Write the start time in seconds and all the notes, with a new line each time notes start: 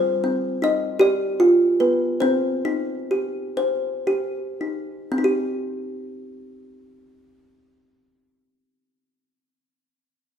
Already playing: G3 C5
0.24 C4
0.62 D#4 D#5
0.99 G4 D5
1.40 F4
1.80 B3 B4
2.20 C4 C5
2.65 D#4
3.11 G4
3.57 C5
4.07 G4
4.61 D#4
5.12 C4
5.18 D#4
5.24 G4